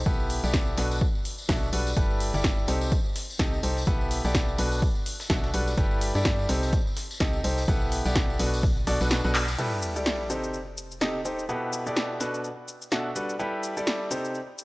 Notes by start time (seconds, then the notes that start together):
0.06 B1 B3 E4 G4 A4 B4, kick, tambourine
0.20 tambourine
0.30 open hi-hat
0.44 B1 B3 E4 G4 A4 D5, tambourine
0.54 kick, snare, tambourine
0.67 tambourine
0.77 B1 B2 D4 F#4 A4 B4, snare, open hi-hat
0.91 tambourine
1.01 kick, tambourine
1.15 tambourine
1.25 open hi-hat
1.38 tambourine
1.49 B1 B2 D4 F#4 A4 E5, kick, snare, open hi-hat, tambourine
1.63 tambourine
1.73 B1 G3 D4 F#4 A4 B4, open hi-hat
1.87 tambourine
1.97 G1 G3 E4 G4 A4 B4, kick, closed hi-hat, tambourine
2.10 tambourine
2.20 closed hi-hat, open hi-hat
2.34 G1 G3 E4 G4 A4 D5, tambourine
2.44 kick, snare, closed hi-hat, tambourine
2.59 tambourine
2.68 C2 C3 D#4 G4 A4 C5, snare, closed hi-hat, open hi-hat
2.81 tambourine
2.92 kick, closed hi-hat, tambourine
3.06 tambourine
3.16 snare, closed hi-hat, open hi-hat
3.30 tambourine
3.39 C2 C3 D#4 G4 A4 D#5, kick, snare, closed hi-hat, tambourine
3.54 tambourine
3.63 C2 D#4 G4 A4 C5, closed hi-hat, open hi-hat
3.77 snare, tambourine
3.87 B1 B3 E4 G4 A4 B4, kick, closed hi-hat, tambourine
4.01 tambourine
4.11 closed hi-hat, open hi-hat
4.25 B1 B3 E4 G4 A4 D5, tambourine
4.35 kick, snare, closed hi-hat, tambourine
4.49 tambourine
4.58 B1 B2 D4 F#4 A4 B4, closed hi-hat, open hi-hat
4.72 tambourine
4.82 kick, open hi-hat, tambourine
4.95 tambourine
5.06 closed hi-hat, open hi-hat
5.20 snare, tambourine
5.30 B1 B2 D4 F#4 A4 E5, kick, snare, closed hi-hat, tambourine
5.44 snare, tambourine
5.54 B1 G3 D4 F#4 A4 B4, closed hi-hat, open hi-hat
5.67 tambourine
5.77 G1 G3 E4 G4 A4 B4, kick, closed hi-hat, tambourine
5.91 tambourine
6.01 closed hi-hat, open hi-hat
6.15 G2 G3 E4 G4 A4 D5, tambourine
6.25 kick, snare, closed hi-hat, tambourine
6.39 tambourine
6.49 C2 C3 D#4 G4 A4 C5, snare, closed hi-hat, open hi-hat
6.63 tambourine
6.73 kick, closed hi-hat, tambourine
6.87 tambourine
6.97 snare, closed hi-hat, open hi-hat
7.11 tambourine
7.20 C2 C3 D#4 G4 A4 D#5, kick, snare, closed hi-hat, tambourine
7.33 tambourine
7.44 C2 D#4 G4 A4 C5, closed hi-hat, open hi-hat
7.58 snare, tambourine
7.68 B1 B3 E4 G4 A4 B4, kick, closed hi-hat, tambourine
7.82 tambourine
7.92 closed hi-hat, open hi-hat
8.05 B1 B3 E4 G4 A4 D5, tambourine
8.15 kick, snare, closed hi-hat, tambourine
8.30 tambourine
8.39 B1 B2 D4 F#4 A4 B4, closed hi-hat, open hi-hat
8.54 tambourine
8.63 kick, open hi-hat, tambourine
8.77 tambourine
8.87 B1 B2 D4 F#4 A4 D5, closed hi-hat, open hi-hat
9.01 B1 B2 D4 F#4 A4 B4, snare, tambourine
9.11 snare, closed hi-hat, tambourine
9.24 B1 B2 D4 F#4 A4 B4, snare, tambourine
9.35 clap, closed hi-hat, open hi-hat
9.48 tambourine
9.58 G3 E4 G4 A4 B4, crash, sub drop, shaker
9.82 shaker
9.96 G3 E4 G4 A4 D5, shaker
10.06 snare, shaker
10.30 C3 D#4 G4 A4 C5, shaker
10.44 shaker
10.54 shaker
10.78 shaker
10.91 shaker
11.01 C3 D#4 G4 A4 D#5, snare, shaker
11.25 D#4 G4 A4 C5, shaker
11.39 shaker
11.49 B2 B3 E4 G4 A4 B4, shaker
11.73 shaker
11.86 B2 B3 E4 G4 A4 D5, shaker
11.96 snare, shaker
12.20 B2 D4 F#4 A4 B4, snare, shaker
12.34 shaker
12.44 shaker
12.68 shaker
12.82 shaker
12.92 B2 D4 F#4 A4 E5, snare, shaker
13.16 G3 D4 F#4 A4 B4, shaker
13.29 shaker
13.39 G3 E4 G4 A4 B4, shaker
13.63 shaker
13.77 G3 E4 G4 A4 D5, shaker
13.87 snare, shaker
14.11 C3 D#4 G4 A4 C5, shaker
14.25 shaker
14.35 shaker
14.58 shaker